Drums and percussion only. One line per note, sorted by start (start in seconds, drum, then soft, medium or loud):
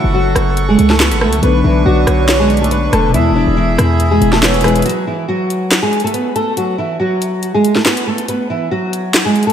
0.36 cross-stick loud
0.36 closed hi-hat medium
0.57 closed hi-hat medium
0.79 closed hi-hat medium
0.90 snare medium
1.00 snare loud
1.00 clap medium
1.11 closed hi-hat medium
1.21 cross-stick loud
1.33 closed hi-hat medium
1.43 closed hi-hat medium
2.07 cross-stick loud
2.07 closed hi-hat medium
2.28 snare loud
2.28 clap medium
2.28 closed hi-hat medium
2.50 closed hi-hat soft
2.57 closed hi-hat medium
2.64 closed hi-hat medium
2.71 closed hi-hat medium
2.93 cross-stick loud
2.93 closed hi-hat medium
3.14 closed hi-hat medium
3.78 cross-stick loud
3.78 closed hi-hat medium
4.00 closed hi-hat medium
4.22 closed hi-hat medium
4.33 snare medium
4.43 snare loud
4.43 clap medium
4.54 closed hi-hat medium
4.61 cross-stick loud
4.61 closed hi-hat medium
4.61 open hi-hat medium
4.68 closed hi-hat medium
4.76 closed hi-hat medium
4.82 closed hi-hat medium
4.86 closed hi-hat medium
4.89 closed hi-hat medium
5.50 closed hi-hat medium
5.71 snare loud
5.71 clap medium
5.71 closed hi-hat medium
5.93 closed hi-hat soft
6.00 closed hi-hat medium
6.07 closed hi-hat medium
6.14 closed hi-hat medium
6.36 closed hi-hat medium
6.57 closed hi-hat medium
7.22 closed hi-hat medium
7.43 closed hi-hat medium
7.65 closed hi-hat medium
7.75 snare medium
7.86 snare loud
7.86 clap medium
7.97 closed hi-hat medium
8.18 closed hi-hat medium
8.28 closed hi-hat medium
8.93 closed hi-hat medium
9.14 snare loud
9.14 clap medium
9.14 closed hi-hat medium
9.36 closed hi-hat soft
9.43 closed hi-hat medium
9.50 closed hi-hat medium